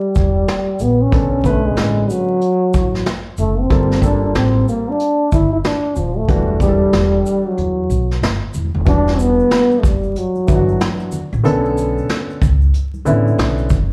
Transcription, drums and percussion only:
0.15 kick medium
0.15 shaker medium
0.48 snare loud
0.48 closed hi-hat medium
0.79 closed hi-hat medium
0.79 shaker soft
1.12 kick loud
1.12 closed hi-hat medium
1.44 kick medium
1.44 shaker soft
1.76 snare medium
1.76 closed hi-hat medium
2.10 shaker soft
2.41 closed hi-hat medium
2.74 kick medium
2.74 shaker soft
2.95 snare soft
3.06 snare loud
3.06 closed hi-hat medium
3.37 closed hi-hat medium
3.37 shaker soft
3.70 kick loud
3.70 closed hi-hat medium
3.91 snare soft
4.02 kick medium
4.02 closed hi-hat medium
4.02 shaker medium
4.35 snare loud
4.35 closed hi-hat medium
4.68 shaker soft
5.00 closed hi-hat medium
5.32 kick medium
5.32 shaker medium
5.64 snare loud
5.64 closed hi-hat medium
5.96 shaker soft
6.28 kick loud
6.28 closed hi-hat loud
6.60 kick medium
6.60 shaker medium
6.92 snare loud
6.92 closed hi-hat medium
7.26 shaker medium
7.58 closed hi-hat medium
7.90 shaker medium
8.11 snare soft
8.23 snare loud
8.23 closed hi-hat medium
8.54 shaker soft
8.86 kick loud
8.86 closed hi-hat medium
8.86 shaker medium
9.07 snare soft
9.07 shaker soft
9.19 shaker medium
9.39 shaker soft
9.51 snare loud
9.51 closed hi-hat medium
9.51 shaker medium
9.71 shaker soft
9.83 kick loud
9.83 high conga soft
9.83 low conga medium
9.83 shaker soft
9.83 shaker medium
10.03 shaker soft
10.16 closed hi-hat medium
10.16 shaker medium
10.35 high conga soft
10.35 shaker soft
10.48 kick medium
10.48 low conga medium
10.48 shaker soft
10.68 high conga medium
10.68 shaker soft
10.80 snare loud
10.80 closed hi-hat medium
10.80 shaker medium
11.00 shaker soft
11.12 low conga medium
11.12 shaker medium
11.34 shaker medium
11.44 closed hi-hat medium
11.44 shaker medium
11.65 shaker soft
11.77 shaker medium
11.98 shaker soft
12.09 snare loud
12.09 closed hi-hat medium
12.09 shaker medium
12.30 shaker soft
12.42 kick loud
12.42 high conga soft
12.42 low conga medium
12.42 shaker soft
12.62 shaker soft
12.74 closed hi-hat medium
12.74 shaker medium
12.94 high conga soft
12.94 shaker soft
13.06 low conga medium
13.06 shaker medium
13.06 shaker soft
13.27 high conga medium
13.27 shaker medium
13.38 snare loud
13.38 closed hi-hat medium
13.38 shaker medium
13.58 shaker medium
13.70 kick medium
13.70 closed hi-hat medium
13.70 low conga medium
13.70 shaker medium
13.70 shaker soft

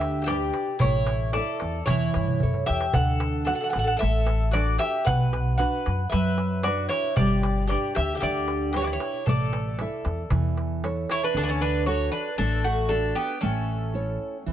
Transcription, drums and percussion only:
0.01 darbuka tek medium
0.28 darbuka tek medium
0.41 darbuka tek soft
0.54 darbuka tek medium
0.68 darbuka tek soft
0.80 darbuka dum loud
0.95 darbuka tek soft
1.07 darbuka tek medium
1.20 darbuka tek soft
1.33 darbuka tek medium
1.46 darbuka tek soft
1.60 darbuka tek medium
1.74 darbuka tek soft
1.87 darbuka tek medium
1.87 darbuka dum medium
2.14 darbuka tek medium
2.28 darbuka dum medium
2.40 darbuka dum medium
2.54 darbuka dum medium
2.67 darbuka tek medium
2.81 darbuka tek medium
2.94 darbuka dum loud
3.08 darbuka tek soft
3.20 darbuka tek medium
3.47 darbuka tek medium
3.73 darbuka tek medium
3.87 darbuka tek soft
4.01 darbuka tek medium
4.27 darbuka tek medium
4.54 darbuka tek medium
4.67 darbuka tek soft
4.80 darbuka tek medium
4.94 darbuka tek soft
5.07 darbuka dum loud
5.20 darbuka tek soft
5.33 darbuka tek medium
5.59 darbuka tek medium
5.86 darbuka tek medium
5.99 darbuka tek soft
6.12 darbuka tek medium
6.38 darbuka tek medium
6.63 darbuka tek medium
6.77 darbuka tek soft
6.90 darbuka tek medium
7.04 darbuka tek soft
7.17 darbuka dum loud
7.30 darbuka tek soft
7.43 darbuka tek medium
7.70 darbuka tek medium
7.96 darbuka tek medium
8.09 darbuka tek soft
8.22 darbuka tek medium
8.48 darbuka tek medium
8.74 darbuka tek medium
8.88 darbuka tek soft
9.00 darbuka tek medium
9.14 darbuka tek soft
9.27 darbuka dum medium
9.40 darbuka tek soft
9.53 darbuka tek medium
9.66 darbuka tek soft
9.79 darbuka tek medium
10.05 darbuka tek medium
10.30 darbuka tek medium
10.30 darbuka dum medium
10.44 darbuka tek soft
10.57 darbuka tek medium
10.84 darbuka tek medium
10.97 darbuka tek soft
11.10 darbuka tek medium
11.22 darbuka tek soft

